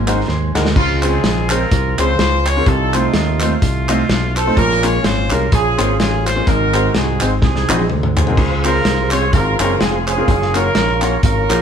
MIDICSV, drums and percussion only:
0, 0, Header, 1, 2, 480
1, 0, Start_track
1, 0, Key_signature, -5, "major"
1, 0, Tempo, 475813
1, 768, Time_signature, 4, 2, 24, 8
1, 11719, End_track
2, 0, Start_track
2, 0, Title_t, "Drums"
2, 76, Note_on_c, 9, 42, 65
2, 79, Note_on_c, 9, 39, 96
2, 177, Note_off_c, 9, 42, 0
2, 179, Note_off_c, 9, 39, 0
2, 285, Note_on_c, 9, 38, 54
2, 386, Note_off_c, 9, 38, 0
2, 557, Note_on_c, 9, 38, 81
2, 565, Note_on_c, 9, 39, 84
2, 658, Note_off_c, 9, 38, 0
2, 662, Note_on_c, 9, 38, 87
2, 666, Note_off_c, 9, 39, 0
2, 762, Note_off_c, 9, 38, 0
2, 766, Note_on_c, 9, 49, 95
2, 767, Note_on_c, 9, 36, 108
2, 867, Note_off_c, 9, 49, 0
2, 868, Note_off_c, 9, 36, 0
2, 1037, Note_on_c, 9, 39, 91
2, 1041, Note_on_c, 9, 42, 66
2, 1138, Note_off_c, 9, 39, 0
2, 1142, Note_off_c, 9, 42, 0
2, 1249, Note_on_c, 9, 38, 119
2, 1249, Note_on_c, 9, 42, 83
2, 1349, Note_off_c, 9, 42, 0
2, 1350, Note_off_c, 9, 38, 0
2, 1509, Note_on_c, 9, 39, 92
2, 1529, Note_on_c, 9, 42, 79
2, 1610, Note_off_c, 9, 39, 0
2, 1630, Note_off_c, 9, 42, 0
2, 1729, Note_on_c, 9, 42, 118
2, 1731, Note_on_c, 9, 36, 121
2, 1830, Note_off_c, 9, 42, 0
2, 1832, Note_off_c, 9, 36, 0
2, 1998, Note_on_c, 9, 42, 72
2, 2006, Note_on_c, 9, 39, 97
2, 2099, Note_off_c, 9, 42, 0
2, 2107, Note_off_c, 9, 39, 0
2, 2209, Note_on_c, 9, 42, 79
2, 2210, Note_on_c, 9, 38, 125
2, 2310, Note_off_c, 9, 42, 0
2, 2311, Note_off_c, 9, 38, 0
2, 2476, Note_on_c, 9, 42, 64
2, 2486, Note_on_c, 9, 39, 90
2, 2577, Note_off_c, 9, 42, 0
2, 2587, Note_off_c, 9, 39, 0
2, 2685, Note_on_c, 9, 42, 88
2, 2688, Note_on_c, 9, 36, 114
2, 2786, Note_off_c, 9, 42, 0
2, 2789, Note_off_c, 9, 36, 0
2, 2958, Note_on_c, 9, 42, 67
2, 2965, Note_on_c, 9, 39, 89
2, 3059, Note_off_c, 9, 42, 0
2, 3066, Note_off_c, 9, 39, 0
2, 3163, Note_on_c, 9, 38, 125
2, 3163, Note_on_c, 9, 42, 85
2, 3264, Note_off_c, 9, 38, 0
2, 3264, Note_off_c, 9, 42, 0
2, 3432, Note_on_c, 9, 39, 95
2, 3448, Note_on_c, 9, 42, 83
2, 3533, Note_off_c, 9, 39, 0
2, 3549, Note_off_c, 9, 42, 0
2, 3652, Note_on_c, 9, 42, 116
2, 3653, Note_on_c, 9, 36, 112
2, 3753, Note_off_c, 9, 42, 0
2, 3754, Note_off_c, 9, 36, 0
2, 3918, Note_on_c, 9, 42, 66
2, 3923, Note_on_c, 9, 39, 102
2, 4019, Note_off_c, 9, 42, 0
2, 4024, Note_off_c, 9, 39, 0
2, 4130, Note_on_c, 9, 42, 82
2, 4131, Note_on_c, 9, 38, 127
2, 4231, Note_off_c, 9, 42, 0
2, 4232, Note_off_c, 9, 38, 0
2, 4399, Note_on_c, 9, 42, 66
2, 4405, Note_on_c, 9, 39, 88
2, 4500, Note_off_c, 9, 42, 0
2, 4506, Note_off_c, 9, 39, 0
2, 4610, Note_on_c, 9, 36, 113
2, 4610, Note_on_c, 9, 42, 86
2, 4710, Note_off_c, 9, 36, 0
2, 4711, Note_off_c, 9, 42, 0
2, 4752, Note_on_c, 9, 38, 35
2, 4853, Note_off_c, 9, 38, 0
2, 4881, Note_on_c, 9, 39, 89
2, 4882, Note_on_c, 9, 42, 66
2, 4982, Note_off_c, 9, 39, 0
2, 4983, Note_off_c, 9, 42, 0
2, 5088, Note_on_c, 9, 42, 87
2, 5089, Note_on_c, 9, 38, 127
2, 5189, Note_off_c, 9, 42, 0
2, 5190, Note_off_c, 9, 38, 0
2, 5349, Note_on_c, 9, 39, 94
2, 5370, Note_on_c, 9, 42, 75
2, 5450, Note_off_c, 9, 39, 0
2, 5470, Note_off_c, 9, 42, 0
2, 5569, Note_on_c, 9, 42, 117
2, 5571, Note_on_c, 9, 36, 122
2, 5670, Note_off_c, 9, 42, 0
2, 5672, Note_off_c, 9, 36, 0
2, 5836, Note_on_c, 9, 42, 71
2, 5844, Note_on_c, 9, 39, 100
2, 5937, Note_off_c, 9, 42, 0
2, 5945, Note_off_c, 9, 39, 0
2, 6050, Note_on_c, 9, 42, 87
2, 6052, Note_on_c, 9, 38, 121
2, 6151, Note_off_c, 9, 42, 0
2, 6153, Note_off_c, 9, 38, 0
2, 6317, Note_on_c, 9, 42, 62
2, 6322, Note_on_c, 9, 38, 34
2, 6327, Note_on_c, 9, 39, 92
2, 6418, Note_off_c, 9, 42, 0
2, 6423, Note_off_c, 9, 38, 0
2, 6428, Note_off_c, 9, 39, 0
2, 6527, Note_on_c, 9, 42, 85
2, 6528, Note_on_c, 9, 36, 106
2, 6628, Note_off_c, 9, 42, 0
2, 6629, Note_off_c, 9, 36, 0
2, 6797, Note_on_c, 9, 42, 70
2, 6801, Note_on_c, 9, 39, 86
2, 6898, Note_off_c, 9, 42, 0
2, 6902, Note_off_c, 9, 39, 0
2, 7006, Note_on_c, 9, 42, 81
2, 7007, Note_on_c, 9, 38, 123
2, 7107, Note_off_c, 9, 38, 0
2, 7107, Note_off_c, 9, 42, 0
2, 7269, Note_on_c, 9, 39, 97
2, 7282, Note_on_c, 9, 42, 81
2, 7370, Note_off_c, 9, 39, 0
2, 7383, Note_off_c, 9, 42, 0
2, 7484, Note_on_c, 9, 38, 63
2, 7489, Note_on_c, 9, 36, 115
2, 7585, Note_off_c, 9, 38, 0
2, 7590, Note_off_c, 9, 36, 0
2, 7622, Note_on_c, 9, 38, 56
2, 7723, Note_off_c, 9, 38, 0
2, 7757, Note_on_c, 9, 48, 70
2, 7762, Note_on_c, 9, 39, 101
2, 7858, Note_off_c, 9, 48, 0
2, 7862, Note_off_c, 9, 39, 0
2, 7862, Note_on_c, 9, 48, 66
2, 7963, Note_off_c, 9, 48, 0
2, 7965, Note_on_c, 9, 47, 86
2, 8066, Note_off_c, 9, 47, 0
2, 8104, Note_on_c, 9, 45, 79
2, 8204, Note_off_c, 9, 45, 0
2, 8240, Note_on_c, 9, 43, 102
2, 8245, Note_on_c, 9, 39, 89
2, 8341, Note_off_c, 9, 43, 0
2, 8343, Note_on_c, 9, 43, 97
2, 8346, Note_off_c, 9, 39, 0
2, 8444, Note_off_c, 9, 43, 0
2, 8447, Note_on_c, 9, 36, 114
2, 8447, Note_on_c, 9, 57, 77
2, 8548, Note_off_c, 9, 36, 0
2, 8548, Note_off_c, 9, 57, 0
2, 8719, Note_on_c, 9, 42, 69
2, 8722, Note_on_c, 9, 39, 92
2, 8820, Note_off_c, 9, 42, 0
2, 8823, Note_off_c, 9, 39, 0
2, 8928, Note_on_c, 9, 42, 84
2, 8929, Note_on_c, 9, 38, 127
2, 9029, Note_off_c, 9, 42, 0
2, 9030, Note_off_c, 9, 38, 0
2, 9189, Note_on_c, 9, 39, 98
2, 9209, Note_on_c, 9, 42, 78
2, 9290, Note_off_c, 9, 39, 0
2, 9310, Note_off_c, 9, 42, 0
2, 9411, Note_on_c, 9, 42, 118
2, 9412, Note_on_c, 9, 36, 111
2, 9512, Note_off_c, 9, 42, 0
2, 9513, Note_off_c, 9, 36, 0
2, 9682, Note_on_c, 9, 39, 102
2, 9682, Note_on_c, 9, 42, 67
2, 9783, Note_off_c, 9, 39, 0
2, 9783, Note_off_c, 9, 42, 0
2, 9891, Note_on_c, 9, 42, 78
2, 9893, Note_on_c, 9, 38, 123
2, 9992, Note_off_c, 9, 42, 0
2, 9993, Note_off_c, 9, 38, 0
2, 10161, Note_on_c, 9, 42, 67
2, 10165, Note_on_c, 9, 39, 88
2, 10262, Note_off_c, 9, 42, 0
2, 10266, Note_off_c, 9, 39, 0
2, 10370, Note_on_c, 9, 36, 110
2, 10372, Note_on_c, 9, 42, 88
2, 10471, Note_off_c, 9, 36, 0
2, 10473, Note_off_c, 9, 42, 0
2, 10509, Note_on_c, 9, 38, 38
2, 10609, Note_off_c, 9, 38, 0
2, 10642, Note_on_c, 9, 39, 85
2, 10642, Note_on_c, 9, 42, 69
2, 10743, Note_off_c, 9, 39, 0
2, 10743, Note_off_c, 9, 42, 0
2, 10844, Note_on_c, 9, 42, 85
2, 10845, Note_on_c, 9, 38, 124
2, 10945, Note_off_c, 9, 38, 0
2, 10945, Note_off_c, 9, 42, 0
2, 11115, Note_on_c, 9, 39, 89
2, 11124, Note_on_c, 9, 42, 79
2, 11216, Note_off_c, 9, 39, 0
2, 11225, Note_off_c, 9, 42, 0
2, 11330, Note_on_c, 9, 42, 119
2, 11331, Note_on_c, 9, 36, 115
2, 11431, Note_off_c, 9, 42, 0
2, 11432, Note_off_c, 9, 36, 0
2, 11596, Note_on_c, 9, 42, 74
2, 11607, Note_on_c, 9, 39, 110
2, 11696, Note_off_c, 9, 42, 0
2, 11708, Note_off_c, 9, 39, 0
2, 11719, End_track
0, 0, End_of_file